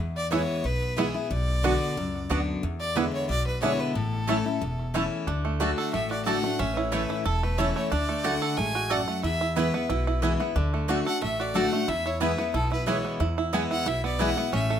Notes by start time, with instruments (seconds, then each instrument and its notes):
Already playing: upright bass E2, steel-string acoustic guitar E2
0.17 fiddle D5
0.31 steel-string acoustic guitar E3 G#3 B3 E4, mandolin B3 E4 B4 G#5, five-string banjo B3 E4, fiddle C#5
0.64 upright bass B1, steel-string acoustic guitar B2, fiddle B4
0.97 steel-string acoustic guitar E3 G#3 B3 E4, mandolin B3 E4 B4 G#5, five-string banjo B3 E4, fiddle G#4
1.14 steel-string acoustic guitar B3 E4
1.30 upright bass B1, steel-string acoustic guitar B2, fiddle D5
1.63 steel-string acoustic guitar D3 B3 D4 F#4, mandolin B3 F#4 D5 F#5, five-string banjo B3 D4 F#4
1.97 upright bass C#2, steel-string acoustic guitar F#2
2.29 upright bass D2, steel-string acoustic guitar D3 B3 D4 F#4, mandolin B3 F#4 D5 F#5, five-string banjo B3 D4 F#4
2.63 steel-string acoustic guitar E2, upright bass E2
2.80 fiddle D5
2.95 steel-string acoustic guitar D3 G#3 B3 E4, mandolin B3 E4 D5 G#5, five-string banjo B3 D4 E4, fiddle B4
3.14 fiddle C#5
3.29 upright bass B1, steel-string acoustic guitar B2, fiddle D5
3.47 fiddle B4
3.62 steel-string acoustic guitar D3 G#3 B3 E4, mandolin B3 E4 D5 G#5, five-string banjo B3 D4 E4, fiddle C#5
3.80 fiddle B4
3.95 upright bass A1, steel-string acoustic guitar A2, fiddle A4
4.27 steel-string acoustic guitar E3 A3 C#4 E4, mandolin A3 E4 C#5 A5, five-string banjo A3 C#4 E4
4.46 steel-string acoustic guitar C#4 E4
4.61 upright bass E1, steel-string acoustic guitar E2
4.94 steel-string acoustic guitar E3 A3 C#4 E4, mandolin A3 E4 C#5 A5, five-string banjo A3 C#4 E4
5.27 upright bass D2, steel-string acoustic guitar D3, five-string banjo D4
5.45 five-string banjo A3
5.60 steel-string acoustic guitar D3 A3 D4 F#4, mandolin A3 F#4 D5 A5, five-string banjo F#4
5.78 five-string banjo A4, fiddle F#5
5.93 upright bass A1, steel-string acoustic guitar A2, five-string banjo A3, fiddle E5
6.11 five-string banjo F#4, fiddle D5
6.25 steel-string acoustic guitar D3 A3 D4 F#4, mandolin A3 F#4 D5 A5, five-string banjo A4, fiddle F#5
6.43 five-string banjo A3, steel-string acoustic guitar D4 F#4
6.59 upright bass A1, steel-string acoustic guitar A2, five-string banjo C#4, fiddle E5
6.73 fiddle B4 C#5
6.77 five-string banjo E4
6.92 steel-string acoustic guitar E3 A3 C#4 E4, mandolin A3 E4 C#5 A5, five-string banjo A3, fiddle B4
7.10 five-string banjo E4
7.25 upright bass E1, steel-string acoustic guitar E2, fiddle A4, five-string banjo A4
7.43 five-string banjo A3, fiddle B4
7.58 steel-string acoustic guitar E3 A3 C#4 E4, mandolin A3 E4 C#5 A5, five-string banjo E4, fiddle C#5
7.76 five-string banjo A3, fiddle C#5
7.91 upright bass D2, steel-string acoustic guitar D3, five-string banjo D4, fiddle D5
8.09 five-string banjo A3
8.24 steel-string acoustic guitar D3 A3 D4 F#4, mandolin A3 F#4 D5 A5, five-string banjo F#4, fiddle F#5
8.42 five-string banjo A4
8.57 upright bass A1, steel-string acoustic guitar G#3, five-string banjo A3, fiddle G#5
8.75 five-string banjo F#4
8.90 steel-string acoustic guitar F#2, mandolin A3 F#4 D5 A5, five-string banjo A4, fiddle F#5
9.08 five-string banjo A3
9.23 upright bass E2, steel-string acoustic guitar E2, five-string banjo E4, fiddle E5
9.41 five-string banjo E4
9.56 steel-string acoustic guitar E3 G#3 B3 E4, mandolin B3 E4 B4 G#5, five-string banjo E4, fiddle B4
9.74 five-string banjo B3, steel-string acoustic guitar B3 E4
9.89 upright bass B1, steel-string acoustic guitar B2, five-string banjo E4
10.07 five-string banjo E4
10.22 steel-string acoustic guitar E3 G#3 B3 E4, mandolin B3 E4 B4 G#5, five-string banjo E4
10.40 five-string banjo B3, steel-string acoustic guitar B3 E4
10.56 upright bass D2, steel-string acoustic guitar D3, five-string banjo D4
10.74 five-string banjo A3
10.88 steel-string acoustic guitar D3 A3 D4 F#4, mandolin A3 F#4 D5 A5, five-string banjo F#4
11.05 steel-string acoustic guitar D4 F#4, five-string banjo A4, fiddle F#5
11.22 upright bass A1, steel-string acoustic guitar A2, five-string banjo A3, fiddle E5
11.40 five-string banjo F#4, fiddle D5
11.54 steel-string acoustic guitar D3 A3 D4 F#4, mandolin A3 F#4 D5 A5, five-string banjo A4, fiddle F#5
11.72 five-string banjo A3, steel-string acoustic guitar D4 F#4
11.88 steel-string acoustic guitar E2, upright bass E2, five-string banjo E4, fiddle E5
12.06 five-string banjo E4, fiddle C#5
12.20 steel-string acoustic guitar E3 G#3 B3 E4, mandolin B3 E4 B4 G#5, five-string banjo E4, fiddle B4
12.38 five-string banjo B3, steel-string acoustic guitar B3 E4
12.54 upright bass B1, steel-string acoustic guitar B2, five-string banjo E4, fiddle A4
12.72 five-string banjo E4, fiddle B4
12.86 steel-string acoustic guitar E3 G#3 B3 E4, mandolin B3 E4 B4 G#5, five-string banjo E4, fiddle C#5
13.05 five-string banjo B3
13.20 upright bass E2, steel-string acoustic guitar E2, five-string banjo E4
13.38 five-string banjo E4
13.53 steel-string acoustic guitar E3 G#3 B3 E4, mandolin B3 E4 B4 G#5, five-string banjo B3
13.71 five-string banjo E4, fiddle F#5
13.86 upright bass B1, steel-string acoustic guitar B2, five-string banjo E4, fiddle E5
14.04 five-string banjo B3, fiddle D5
14.19 steel-string acoustic guitar E3 G#3 B3 E4, mandolin B3 E4 B4 G#5, five-string banjo E4, fiddle F#5
14.37 five-string banjo B3, steel-string acoustic guitar B3 E4
14.52 upright bass A1, steel-string acoustic guitar A2, five-string banjo C#4, fiddle E5
14.70 five-string banjo A3